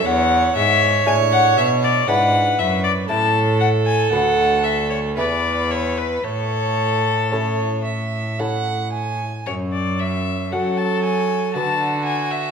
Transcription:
<<
  \new Staff \with { instrumentName = "Violin" } { \time 3/4 \key a \major \tempo 4 = 58 fis''8 e''8 gis''16 fis''16 e''16 d''16 fis''8 e''16 d''16 | a''8 fis''16 gis''16 fis''8 e''16 cis''16 d''8 cis''16 b'16 | a'2 r4 | cis''16 d''16 e''8 fis''16 a''16 gis''8 a''8 gis''16 e''16 | }
  \new Staff \with { instrumentName = "Violin" } { \time 3/4 \key a \major cis''2 b'4 | a'2 b'4 | cis''4 cis''8 e''8 fis''8 gis''8 | r4 a'4 fis'4 | }
  \new Staff \with { instrumentName = "Lute" } { \time 3/4 \key a \major r4 <d' e' gis'>4 <d' e' gis'>4 | <cis' e' a'>4 <b fis' b'>4 <b e' gis'>4 | r4 <cis' e' a'>4 <cis' e' a'>4 | r4 <cis' fis' a'>4 <b fis' b'>4 | }
  \new Staff \with { instrumentName = "Lute" } { \clef bass \time 3/4 \key a \major e,8 gis,8 a,8 b,8 gis,8 fis,8 | a,4 d,4 e,4 | a,2. | fis,4 fis4 d4 | }
  \new Staff \with { instrumentName = "Cello" } { \clef bass \time 3/4 \key a \major e,8 gis,8 a,8 b,8 gis,8 fis,8 | a,4 d,4 e,4 | a,2. | fis,4 fis4 d4 | }
>>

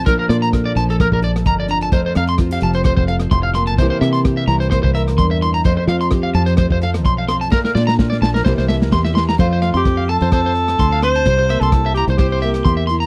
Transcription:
<<
  \new Staff \with { instrumentName = "Clean electric guitar" } { \time 4/4 \key f \major \tempo 4 = 129 bes'16 bes'16 d''16 bes''16 r16 d''16 a''16 a'16 bes'16 bes'16 d''16 r16 bes''16 d''16 bes''16 a''16 | c''16 c''16 f''16 c'''16 r16 f''16 a''16 c''16 c''16 c''16 f''16 r16 c'''16 f''16 c'''16 a''16 | c''16 c''16 e''16 c'''16 r16 e''16 bes''16 c''16 c''16 c''16 e''16 r16 c'''16 e''16 c'''16 bes''16 | c''16 c''16 f''16 c'''16 r16 f''16 a''16 c''16 c''16 c''16 f''16 r16 c'''16 f''16 c'''16 a''16 |
bes'16 bes'16 d''16 bes''16 r16 d''16 a''16 bes'16 c''16 c''16 e''16 r16 c'''16 e''16 c'''16 bes''16 | c''16 c''16 f''16 c'''16 r16 f''16 a''16 c''16 c''16 c''16 r8 c'''16 f''16 c'''16 a''16 | c''16 c''16 e''16 c'''16 r16 e''16 bes''16 c''16 c''16 c''16 e''16 r16 c'''16 e''16 c'''16 bes''16 | }
  \new Staff \with { instrumentName = "Alto saxophone" } { \time 4/4 \key f \major r1 | r1 | r1 | r1 |
r1 | f'8. g'8. a'8 a'4. c''8~ | c''8. a'8. g'8 g'4. r8 | }
  \new Staff \with { instrumentName = "Nylon-string guitar" } { \time 4/4 \key f \major << { <f a d' a'>8 d'8 a'4 a8 a'4 d'8 | a8 c'8 f'16 g'8. a8 a'4. | <e bes e' g'>8 e'8 g'4 bes8 bes'4 e'8 | a8 c'8 g'4 a8 a'4 c'8 |
a8 d'4. <e bes e' g'>8 e'8 g'4 | <f a c'>8 a8 c'8 c'8 c'4 c'8 c'8~ | c'8 bes8 e'8 e'8 e'8 bes8 e'8 e'8 | } \\ { bes,4. f4. f,4 | f,4. f4. a,8 bes,8 | c4. e4. g,4 | f,4. f2~ f8 |
bes,4. f8 c4. e8 | f,1 | c1 | } >> }
  \new Staff \with { instrumentName = "Fingered electric bass" } { \clef bass \time 4/4 \key f \major bes,,16 r16 bes,4 bes,,8. bes,,8. g,,4 | f,,16 r16 f,4 f,,8. f,,8. f,,4 | c,16 r16 c4 c,8. c,8. e,4 | f,16 r16 f4 f,8. f,8. b,,4 |
bes,,16 r16 bes,4 bes,,8 c,16 c,8. e,4 | f,8. f,4 f,4~ f,16 d,4 | c,8. c,4 c,4~ c,16 e,4 | }
  \new DrumStaff \with { instrumentName = "Drums" } \drummode { \time 4/4 <hh bd>8 <hh ss>16 hh16 <hh bd ss>8 hh16 hh16 <hh bd ss>16 bd16 hh16 <hh ss>16 <hh bd>8 hh16 hh16 | <hh bd>8 <hh ss>16 hh16 <hh bd ss>8 hh16 hh16 <hh bd ss>16 bd16 hh16 <hh ss>16 <hh bd>8 <hh ss>16 hh16 | <hh bd>8 <hh ss>16 hh16 <hh bd ss>8 hh16 hh16 <hh bd ss>16 bd16 hh16 <hh ss>16 <hh bd>8 hh16 hh16 | <hh bd>8 <hh ss>16 hh16 <hh bd ss>8 hh16 hh16 <hh bd ss>16 bd16 hh16 <hh ss>16 <hh bd>8 <hh ss>16 hh16 |
<bd sn>16 sn16 sn16 sn16 <bd sn>16 sn16 sn16 sn16 <bd sn>16 sn16 sn16 sn16 <bd sn>16 sn16 sn16 sn16 | <hh bd>8 <hh ss>16 hh16 <hh bd ss>8 hh16 hh16 <hh bd ss>8 hh16 <hh ss>16 <hh bd>8 <hh ss>16 hh16 | <hh bd>8 <hh ss>16 hh16 <hh bd ss>8 hh16 hh16 <hh bd ss>8 hh16 <hh ss>16 <hh bd>8 hh16 hh16 | }
>>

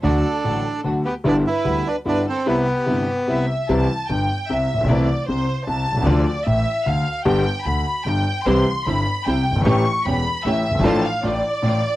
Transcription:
<<
  \new Staff \with { instrumentName = "Violin section" } { \time 3/4 \key c \major \tempo 4 = 150 << { r2. | r2. | r2 e''4 | a''4 g''4 e''4 |
d''4 c''4 a''4 | d''4 e''4 f''4 | g''4 b''4 g''4 | c'''4 b''4 g''4 |
cis'''4 b''4 e''4 | a''8 f''8 d''2 | } \\ { a'2 r8 g'8 | b'8 b'4 b'8 b'8 a'8 | g'2~ g'8 r8 | r2. |
r2. | r2. | r2. | r2. |
r2. | r2. | } >> }
  \new Staff \with { instrumentName = "Bandoneon" } { \time 3/4 \key c \major d'2 r8 b8 | d'8 e'4 d'8 d'8 c'8 | b2~ b8 r8 | r2. |
r2. | r2. | r2. | r2. |
r2. | r2. | }
  \new Staff \with { instrumentName = "String section" } { \time 3/4 \key c \major <a d' fis'>8 r8 <a d' fis'>8 r8 <a d' fis'>8 r8 | <g b e'>8 r8 <g b e'>8 r8 <g b e'>8 r8 | <b c' e'>8 r8 <b c' e'>8 r8 <b c' e'>8 r8 | r2. |
r2. | r2. | r2. | <g c' e'>8 r8 <g c' e'>8 r8 <g c' e'>8 r8 |
<a cis' g'>8 r8 <a cis' g'>8 r8 <a cis' g'>8 r8 | <a d' f'>8 r8 <a d' f'>8 r8 <a d' f'>8 r8 | }
  \new Staff \with { instrumentName = "Grand piano" } { \clef bass \time 3/4 \key c \major <d, d fis a fis'>8 r8 <a,, a, d fis a fis'>8 r8 <d, d fis a fis'>8 r8 | <g,, g, d g b e'>8 r8 <d, d g b e'>8 r8 <g,, g, d g b e'>8 r8 | <c, c g b e'>8 r8 <g,, g, c g b e'>8 r8 <c, c g b e'>8 r8 | <c, c e g e'>8 r8 <g,, g,>8 r8 <c, c>8 r32 a,,32 bes,,32 b,,32 |
<c, c e a e'>8 r8 <c, c>8 r8 <c, c>8 r32 b,,32 c,32 des,32 | <d, d f a f'>8 r8 <a,, a,>8 r8 <d, d>8 r8 | <g,, g, d g b g'>8 r8 <d, d>8 r8 <g,, g,>8 r8 | <c, c e g c' g'>8 r8 <g,, g,>8 r8 <c, c>8 r32 fis,,32 g,,32 aes,,32 |
<a,, a, e a cis' g'>8 r8 <e,, e,>8 r8 <a,, a,>8 r32 fis,,32 g,,32 aes,,32 | <a,, a, f a d' a'>8 r8 <a,, a,>8 r8 <a,, a,>8 r8 | }
  \new Staff \with { instrumentName = "Upright bass" } { \clef bass \time 3/4 \key c \major d,16. r8 r32 a,,16. r8 r32 d,16. r8 r32 | g,,16. r8 r32 d,16. r8 r32 g,,16. r8 r32 | r2. | c,16. r8 r32 g,,16. r8 r32 c,16. r16 a,,32 bes,,32 b,,32 |
c,16. r8 r32 c,16. r8 r32 c,16. r16 b,,32 c,32 des,32 | d,16. r8 r32 a,,16. r8 r32 d,16. r8 r32 | g,,16. r8 r32 d,16. r8 r32 g,,16. r8 r32 | c,16. r8 r32 g,,16. r8 r32 c,16. r16 fis,,32 g,,32 aes,,32 |
a,,16. r8 r32 e,,16. r8 r32 a,,16. r16 fis,,32 g,,32 aes,,32 | a,,16. r8 r32 a,,16. r8 r32 a,,16. r8 r32 | }
>>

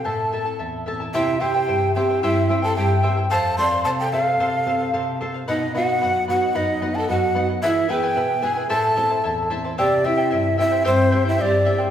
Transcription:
<<
  \new Staff \with { instrumentName = "Quena" } { \time 2/4 \key c \major \tempo 4 = 111 a''4 r4 | e''8 g''4 g''8 | e''8. a''16 g''8. r16 | a''8 c'''8 a''16 g''16 f''8~ |
f''4. r8 | dis''8 fis''4 fis''8 | dis''8. a''16 fis''8. r16 | e''8 g''4 gis''8 |
a''4. r8 | d''8 e''4 e''8 | c''8. e''16 d''8. r16 | }
  \new Staff \with { instrumentName = "Charango" } { \time 2/4 \key c \major <e' a' c'' e'' a''>8 <e' a' e'' a''>16 <e' a' a''>16 <e' a' e'' a''>8 <e' a' e'' a''>16 <e' a' a''>16 | <e' g' c'' e'' g''>8 <e' c'' e'' g''>16 <e' c'' g''>16 <e' c'' e'' g''>8 <e' c'' e'' g''>16 <e' c'' g''>16 | <e' g' c'' e'' g''>8 <e' c'' e'' g''>16 <e' c'' g''>16 <e' c'' e'' g''>8 <e' c'' e'' g''>16 <e' c'' g''>16 | <a' c'' f''>8 <a' c'' f''>16 <c'' f''>16 <a' c'' f''>8 <a' c'' f''>16 <c'' f''>16 |
<a' c'' f''>8 <a' c'' f''>16 <c'' f''>16 <a' c'' f''>8 <a' c'' f''>16 <c'' f''>16 | <b' dis'' fis''>8 <b' dis'' fis''>16 <dis'' fis''>16 <b' dis'' fis''>8 <b' dis'' fis''>16 <dis'' fis''>16 | <b' dis'' fis''>8 <b' dis'' fis''>16 <dis'' fis''>16 <b' dis'' fis''>8 <b' dis'' fis''>16 <dis'' fis''>16 | <e' gis' b' e'' gis''>8 <e' b' e'' gis''>16 <e' b' gis''>16 <e' b' e'' gis''>8 <e' b' e'' gis''>16 <e' b' gis''>16 |
<e' a' c'' e'' a''>8 <e' c'' e'' a''>16 <e' c'' a''>16 <e' c'' e'' a''>8 <e' c'' e'' a''>16 <e' c'' a''>16 | <e' g' c'' e'' g''>8 <e' c'' e'' g''>16 <e' c'' g''>16 <e' c'' e'' g''>8 <e' c'' e'' g''>16 <e' c'' g''>16 | <e' g' c'' e'' g''>8 <e' c'' e'' g''>16 <e' c'' g''>16 <e' c'' e'' g''>8 <e' c'' e'' g''>16 <e' c'' g''>16 | }
  \new Staff \with { instrumentName = "Pan flute" } { \time 2/4 \key c \major a'4 r4 | e'8 g'4 g'8 | e'8. a'16 g'8. r16 | c''8 d''8 c''16 a'16 a'8~ |
a'4. r8 | dis'8 fis'4 fis'8 | dis'8. a'16 fis'8. r16 | e'8 b'4 gis'8 |
a'4. r8 | g'8 e'4 e'8 | c'8. e'16 g'8. r16 | }
  \new Staff \with { instrumentName = "Nylon-string guitar" } { \time 2/4 \key c \major a,8 <c' e' a'>8 e,8 <c' e' a'>8 | c8 <c' e' g'>8 g,8 <c' e' g'>8 | g,8 <c' e' g'>8 g,8 <c' e' g'>8 | f,8 <c' f' a'>8 c8 <c' f' a'>8 |
c8 <c' f' a'>8 c8 <c' f' a'>8 | b,8 <b dis' fis'>8 fis,8 <b dis' fis'>8 | fis,8 <b dis' fis'>8 fis,8 <b dis' fis'>8 | e8 <b e' gis'>8 b,8 <b e' gis'>8 |
a,8 <c' e' a'>8 e,8 <c' e' a'>8 | c8 <c' e' g'>8 g,8 <c' e' g'>8 | g,8 <c' e' g'>8 g,8 <c' e' g'>8 | }
>>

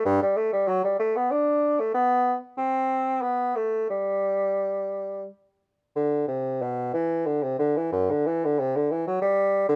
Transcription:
\new Staff \with { instrumentName = "Bassoon" } { \clef bass \time 3/4 \key g \major \tempo 4 = 94 g,16 g16 a16 g16 fis16 g16 a16 b16 d'8. a16 | b8. r16 c'4 b8 a8 | g2 r4 | d8 c8 b,8 e8 d16 c16 d16 e16 |
fis,16 d16 e16 d16 c16 d16 e16 fis16 g8. d16 | }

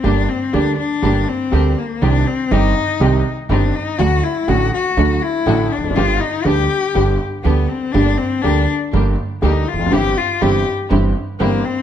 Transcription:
<<
  \new Staff \with { instrumentName = "Cello" } { \time 4/4 \key g \phrygian \tempo 4 = 122 d'8 c'8 d'8 d'4 c'4 bes8 | d'8 c'8 ees'4. r8 d'8 ees'8 | fis'8 e'8 fis'8 fis'4 e'4 d'8 | f'8 ees'8 g'4. r8 b8 c'8 |
d'8 c'8 d'8 r4. ees'8 f'8 | g'8 f'8 g'8 r4. bes8 c'8 | }
  \new Staff \with { instrumentName = "String section" } { \time 4/4 \key g \phrygian <bes d' g'>8 r8 <bes d' g'>8 r8 <bes d' g'>8 r8 <bes d' g'>8 r8 | <c' ees' g'>8 r8 <c' ees' g'>8 r8 <c' ees' g'>8 r8 <c' ees' g'>8 r8 | <a d' fis'>8 r8 <a d' fis'>8 r8 <a d' fis'>8 r8 <a d' fis'>8 r8 | <b d' g'>8 r8 <b d' g'>8 r8 <b d' g'>8 r8 <b d' g'>8 r8 |
<bes d' g'>8 r8 <bes d' g'>8 r8 <bes d' g'>8 r8 <bes d' g'>8 r8 | <c' e' g'>8 r8 <c' e' g'>8 r8 <c' e' g'>8 r8 <c' e' g'>8 r8 | }
  \new Staff \with { instrumentName = "Upright piano" } { \clef bass \time 4/4 \key g \phrygian <g,, g, d g bes g'>8 r8 <d, d g bes g'>8 r8 <g,, g, d g bes g'>8 r8 <d, d g bes g'>8 r8 | <c, c ees g c' g'>8 r8 <g,, g, ees g c' g'>8 r8 <c, c ees g c' g'>8 r8 <g,, g, ees g c' g'>8 r8 | <d, d fis a fis'>8 r8 <a,, a, d fis a fis'>8 r8 <d, d fis a fis'>8 r8 <a,, a, d fis a fis'>8 r32 e,32 f,32 fis,32 | <g,, g, d g b g'>8 r8 <d, d g b g'>8 r8 <g,, g, d g b g'>8 r8 <d, d g b g'>8 r8 |
<g,, g, d g bes g'>8 r8 <d, d g bes g'>8 r8 <g,, g, d g bes g'>8 r8 <d, d g bes g'>8 r32 e,32 f,32 fis,32 | <g,, g, e g c' g'>8 r8 <g,, g, e g c' g'>8 r8 <g,, g, e g c' g'>8 r8 <g,, g, e g c' g'>8 r8 | }
  \new Staff \with { instrumentName = "Upright bass" } { \clef bass \time 4/4 \key g \phrygian g,,16. r8 r32 d,16. r8 r32 g,,16. r8 r32 d,16. r8 r32 | c,16. r8 r32 g,,16. r8 r32 c,16. r8 r32 g,,16. r8 r32 | d,16. r8 r32 a,,16. r8 r32 d,16. r8 r32 a,,16. r16 e,,32 f,,32 fis,,32 | g,,16. r8 r32 d,16. r8 r32 g,,16. r8 r32 d,16. r8 r32 |
g,,16. r8 r32 d,16. r8 r32 g,,16. r8 r32 d,16. r16 e,,32 f,,32 fis,,32 | g,,16. r8 r32 g,,16. r8 r32 g,,16. r8 r32 g,,16. r8 r32 | }
>>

